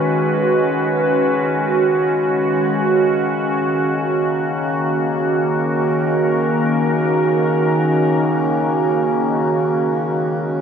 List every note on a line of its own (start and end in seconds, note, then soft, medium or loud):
0.00 10.61 C#3 medium
0.00 10.61 D#3 medium
0.00 3.40 G#3 medium
0.00 9.62 C#4 medium
0.00 10.61 F#4 medium
0.00 3.40 B4 medium
3.44 9.62 A#3 medium
4.67 9.63 A#4 medium
9.69 10.61 G#3 medium
10.14 10.61 C#4 medium